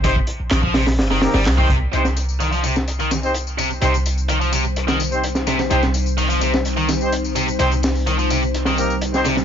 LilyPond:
<<
  \new Staff \with { instrumentName = "Horn section" } { \time 4/4 \key c \minor \tempo 4 = 127 << { <c' ees' g' c''>16 r2 r16 <c' ees' g' bes'>16 r8 <c' ees' g' c''>16 r8 | <c' ees' g' c''>16 r2 r8 <c' ees' g' c''>16 r4 | <c' ees' g' c''>16 r2 r8 <c' ees' g' c''>16 r4 | <c' ees' g' c''>16 r2 r8 <c' ees' g' c''>16 r4 |
<c' ees' g' c''>16 r2 r16 <c' ees' g' bes'>16 r8 <c' ees' g' c''>16 r8 | } \\ { r2 r8 bes8 r4 | r1 | r1 | r1 |
r2 r8 bes8 r4 | } >> }
  \new Staff \with { instrumentName = "Ambient pad" } { \time 4/4 \key c \minor r1 | <g c' ees' c''>1~ | <g c' ees' c''>1~ | <g c' ees' c''>1~ |
<g c' ees' c''>1 | }
  \new Staff \with { instrumentName = "Distorted electric guitar" } { \clef bass \time 4/4 \key c \minor c16 r8. ees16 f16 c16 r8 ees16 r16 g16 r16 ees16 c16 r16 | c16 r8. ees16 f16 c16 r8 ees16 r4 c16 r16 | c16 r8. ees16 f16 c16 r8 ees16 r4 c16 r16 | c16 r8. ees16 f16 c16 r8 ees16 r4 c16 r16 |
c16 r8. ees16 f16 c16 r8 ees16 r4 c16 r16 | }
  \new Staff \with { instrumentName = "808-style bass" } { \clef bass \time 4/4 \key c \minor g,,16 r8 bes,,16 bes,,4 g,,8 r16 g,,16 c,8. r16 | c,1 | c,1 | c,1 |
c,1 | }
  \new DrumStaff \with { instrumentName = "Drums" } \drummode { \time 4/4 <hh bd>16 bd16 hh8 <hc hh sn>16 bd16 <hho sn>16 <hho sn>16 <hho sn>16 sn16 <hho sn>16 <hho sn>16 <hc hho sn>16 bd16 <hh bd>8 | <hh tamb>16 <sn tamb>16 <hh tamb>16 tamb16 <hho tamb>16 tamb16 <hh tamb>16 <sn tamb>16 <hh tamb>16 tamb16 <hh sn tamb>16 tamb16 <hh tamb>16 tamb16 <hh tamb>16 tamb16 | <hh tamb>16 tamb16 <hh tamb>16 tamb16 <hh tamb>16 tamb16 <hh tamb>16 tamb16 <hh tamb>16 <sn tamb>16 <hh tamb>16 tamb16 <hh tamb>16 <sn tamb>16 <hh sn tamb>16 <sn tamb>16 | <hh tamb>16 <sn tamb>16 <hh tamb>16 tamb16 <hho tamb>16 tamb16 <hh tamb>16 <sn tamb>16 <hh tamb>16 tamb16 <hh sn tamb>16 tamb16 <hh tamb>16 tamb16 <hh tamb>16 tamb16 |
<hh tamb>16 tamb16 <hho sn tamb>16 tamb16 <hh tamb>16 tamb16 <hh tamb>16 tamb16 <hh tamb>16 <sn tamb>16 <hh tamb>16 tamb16 <hh tamb>16 <sn tamb>16 <hh sn tamb>16 <sn tamb>16 | }
>>